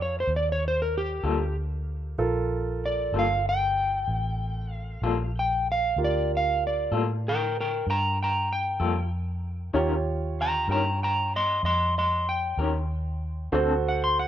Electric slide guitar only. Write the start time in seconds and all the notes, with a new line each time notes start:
0.02 C#5
0.20 C5
0.36 D5
0.52 C#5
0.68 C5
0.82 A#4
0.98 G4
2.86 D5
3.19 F5
3.49 G5
4.71 F5
5.39 G5
5.72 F5
6.04 D5
6.37 F5
6.67 D5
7.28 A#4 G5
7.61 A#4 G5
7.90 G5 A#5
8.23 G5 A#5
8.53 G5
10.41 G5 A#5
10.71 G5 A#5
11.03 G5 A#5
11.36 D#5 C6
11.65 D#5 C6
11.98 D#5 C6
12.29 G5
13.88 F#5
14.04 C6
14.19 F#5